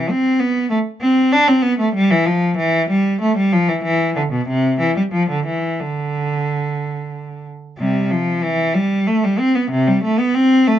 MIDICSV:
0, 0, Header, 1, 2, 480
1, 0, Start_track
1, 0, Key_signature, 0, "major"
1, 0, Tempo, 610998
1, 78, Time_signature, 3, 2, 24, 8
1, 1037, Tempo, 630252
1, 3437, Tempo, 662252
1, 5837, Tempo, 641711
1, 8087, End_track
2, 0, Start_track
2, 0, Title_t, "Cello"
2, 0, Program_c, 0, 42
2, 75, Note_on_c, 0, 60, 78
2, 313, Note_on_c, 0, 59, 77
2, 316, Note_off_c, 0, 60, 0
2, 549, Note_on_c, 0, 57, 83
2, 554, Note_off_c, 0, 59, 0
2, 612, Note_off_c, 0, 57, 0
2, 794, Note_on_c, 0, 60, 84
2, 1032, Note_off_c, 0, 60, 0
2, 1038, Note_on_c, 0, 62, 94
2, 1156, Note_off_c, 0, 62, 0
2, 1158, Note_on_c, 0, 60, 84
2, 1265, Note_on_c, 0, 59, 86
2, 1276, Note_off_c, 0, 60, 0
2, 1389, Note_off_c, 0, 59, 0
2, 1395, Note_on_c, 0, 57, 72
2, 1509, Note_on_c, 0, 55, 88
2, 1512, Note_off_c, 0, 57, 0
2, 1630, Note_off_c, 0, 55, 0
2, 1635, Note_on_c, 0, 52, 85
2, 1752, Note_on_c, 0, 53, 80
2, 1757, Note_off_c, 0, 52, 0
2, 1989, Note_on_c, 0, 52, 86
2, 1996, Note_off_c, 0, 53, 0
2, 2229, Note_off_c, 0, 52, 0
2, 2235, Note_on_c, 0, 55, 81
2, 2472, Note_off_c, 0, 55, 0
2, 2477, Note_on_c, 0, 57, 85
2, 2595, Note_off_c, 0, 57, 0
2, 2598, Note_on_c, 0, 55, 78
2, 2715, Note_off_c, 0, 55, 0
2, 2717, Note_on_c, 0, 53, 89
2, 2837, Note_off_c, 0, 53, 0
2, 2839, Note_on_c, 0, 52, 76
2, 2944, Note_off_c, 0, 52, 0
2, 2953, Note_on_c, 0, 52, 81
2, 3190, Note_off_c, 0, 52, 0
2, 3199, Note_on_c, 0, 50, 76
2, 3247, Note_off_c, 0, 50, 0
2, 3320, Note_on_c, 0, 47, 71
2, 3437, Note_off_c, 0, 47, 0
2, 3441, Note_on_c, 0, 48, 85
2, 3667, Note_off_c, 0, 48, 0
2, 3670, Note_on_c, 0, 52, 77
2, 3786, Note_off_c, 0, 52, 0
2, 3791, Note_on_c, 0, 55, 71
2, 3839, Note_off_c, 0, 55, 0
2, 3910, Note_on_c, 0, 53, 73
2, 4029, Note_off_c, 0, 53, 0
2, 4034, Note_on_c, 0, 50, 64
2, 4152, Note_on_c, 0, 52, 66
2, 4153, Note_off_c, 0, 50, 0
2, 4394, Note_off_c, 0, 52, 0
2, 4397, Note_on_c, 0, 50, 68
2, 5598, Note_off_c, 0, 50, 0
2, 5834, Note_on_c, 0, 48, 64
2, 5837, Note_on_c, 0, 55, 72
2, 6064, Note_off_c, 0, 48, 0
2, 6065, Note_off_c, 0, 55, 0
2, 6079, Note_on_c, 0, 53, 75
2, 6322, Note_on_c, 0, 52, 82
2, 6323, Note_off_c, 0, 53, 0
2, 6558, Note_on_c, 0, 55, 79
2, 6563, Note_off_c, 0, 52, 0
2, 6800, Note_off_c, 0, 55, 0
2, 6800, Note_on_c, 0, 57, 85
2, 6921, Note_off_c, 0, 57, 0
2, 6927, Note_on_c, 0, 55, 78
2, 7035, Note_on_c, 0, 60, 85
2, 7044, Note_off_c, 0, 55, 0
2, 7158, Note_off_c, 0, 60, 0
2, 7158, Note_on_c, 0, 59, 71
2, 7275, Note_on_c, 0, 48, 88
2, 7279, Note_off_c, 0, 59, 0
2, 7395, Note_off_c, 0, 48, 0
2, 7401, Note_on_c, 0, 55, 87
2, 7521, Note_off_c, 0, 55, 0
2, 7521, Note_on_c, 0, 57, 87
2, 7638, Note_off_c, 0, 57, 0
2, 7639, Note_on_c, 0, 59, 86
2, 7751, Note_on_c, 0, 60, 98
2, 7759, Note_off_c, 0, 59, 0
2, 7995, Note_off_c, 0, 60, 0
2, 7996, Note_on_c, 0, 57, 92
2, 8087, Note_off_c, 0, 57, 0
2, 8087, End_track
0, 0, End_of_file